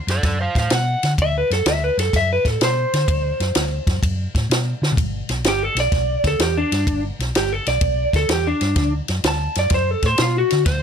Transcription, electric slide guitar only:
0.10 A4 D5
0.24 A4 D5
0.41 C5 F5
0.59 C5 F5
0.75 F#5
10.66 C5

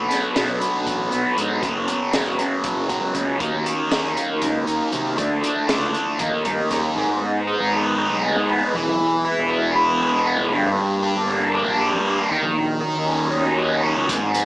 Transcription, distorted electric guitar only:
Already playing: B2 F#3
0.09 F#3 B3
0.35 B2 F#3 B3
0.60 F#3 B3
1.11 F#3 B3
1.36 B2 F#3 B3
1.61 F#2 C#3 F#3
1.87 C#3 F#3
2.12 F#2 C#3 F#3
2.38 C#3 F#3
2.89 C#3 F#3
3.14 F#2 C#3 F#3
3.39 D#3 A#3 D#4
3.64 A#3 D#4
3.89 D#3 A#3 D#4
4.14 A#3 D#4
4.66 A#3 D#4
4.91 D#3 A#3 D#4
5.16 D3 A3 D4
5.42 A3 D4
5.68 D3 A3 D4
5.93 A3 D4
6.19 D#3 A#3 D#4
6.44 A#3 D#4
6.70 D#3 A#3 D#4
6.96 G#2
7.47 D#4
7.72 B3
7.98 D#4
8.23 G#3
8.48 B3
8.74 E3
9.25 E4
9.50 B3
9.76 E4
10.01 G#3
10.27 B3
10.52 G2
11.03 D4
11.28 A#3
11.54 D4
11.79 G3
12.05 A#3
12.30 D#3
12.81 D#4
13.07 C#4
13.32 D#4
13.58 F#3
13.83 C#4
14.09 G#2

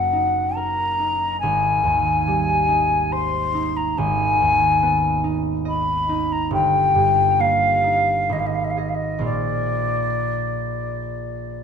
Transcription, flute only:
Already playing: F#5
0.55 A#5
1.40 G#5
3.12 C6
3.76 A#5
3.98 G#5
5.68 B5
6.32 A#5
6.53 G5
7.40 F5
8.32 D#5
8.39 F5
8.46 D#5
8.55 F5
8.64 D#5
8.70 F5
8.79 D#5
8.89 F5
8.95 D#5
9.25 D5

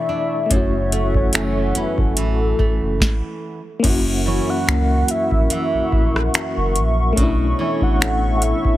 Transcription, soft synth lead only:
Already playing: E5
0.52 C#5
1.16 C#5
1.77 B4
1.99 A4
4.27 C#5
4.50 F#5
5.11 E5
5.52 E5
7.60 C#5
7.83 F#5
8.37 F#5
8.43 E5

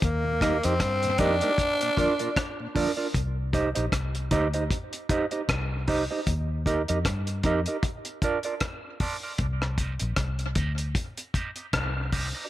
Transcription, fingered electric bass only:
0.03 D#2
0.65 F2
0.81 G2
1.19 F2
3.15 C2
3.77 A#1
3.93 C2
4.32 D2
5.49 C2
6.27 D#2
6.90 F2
7.06 G2
7.44 F2
9.40 C2
10.02 A#1
10.17 C2
10.56 D2
11.74 C2

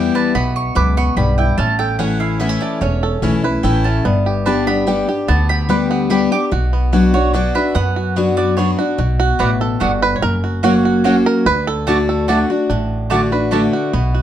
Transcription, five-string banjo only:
Already playing: E4 G4
0.15 B4
0.35 B3
0.76 B4
0.98 B3
1.17 G4
1.38 E4
1.59 C#4
1.80 A4
2.00 C#4
2.21 E4
2.40 B3
2.49 C#4
2.62 A4
2.82 C#4
3.03 A4
3.23 C#4
3.44 B4
3.64 A4
3.85 C#4
4.05 B3
4.26 G4
4.46 B4
4.67 B3
4.88 G4
5.09 G4
5.28 B3
5.50 G4
5.70 B4
5.91 B3
6.11 G4
6.32 G4
6.52 F#4
6.73 B3
6.93 F#4
7.14 F#4
7.35 F#4
7.55 B4
7.75 B3
7.96 F#4
8.17 B3
8.37 F#4
8.57 B3
8.79 F#4
8.99 F#4
9.20 F#4
9.40 B4
9.61 A4
9.81 F#4
10.02 B4
10.16 C#5
10.22 A#4
10.44 F#4
10.64 F#4
10.85 F#4
11.05 F#4
11.26 A#4
11.46 B4
11.67 A4
11.88 D4
12.09 A4
12.29 F#4
12.50 F#4
12.70 D4
13.11 F#4
13.32 B4
13.52 F#4
13.73 F#4
13.93 B3
14.14 F#4

